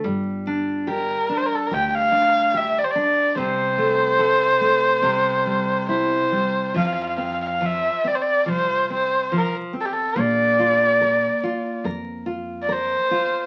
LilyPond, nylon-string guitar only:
\new Staff \with { instrumentName = "Nylon-string guitar" } { \time 4/4 \key f \major \tempo 4 = 71 g8 d'8 g'8 d'8 g'8 d'8 g'8 d'8 | c8 a8 a'8 a8 c8 g8 e'8 g8 | f8 c'8 f8 c'8 f8 c'8 f8 c'8 | bes8 f'8 bes'8 f'8 bes'8 f'8 bes'8 f'8 | }